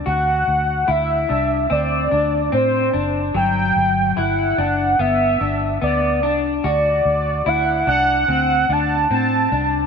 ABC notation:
X:1
M:4/4
L:1/16
Q:1/4=73
K:Dmix
V:1 name="Soft synth lead"
f4 e4 d4 c3 z | g4 f4 e4 d3 z | d4 f2 f4 a2 a3 z |]
V:2 name="Clean electric guitar"
F4 E2 D2 C2 D2 C2 D2 | F,4 E2 D2 B,2 D2 B,2 D2 | F4 E2 D2 C2 D2 C2 D2 |]
V:3 name="Fingered electric bass" clef=bass
D,,2 D,,2 D,,2 C,,2 D,,2 D,,2 A,,2 F,,,2 | G,,,2 G,,,2 G,,,2 F,,,2 G,,,2 G,,,2 D,,2 C,,2 | D,,2 D,,2 D,,2 C,,2 D,,2 D,,2 A,,2 C,,2 |]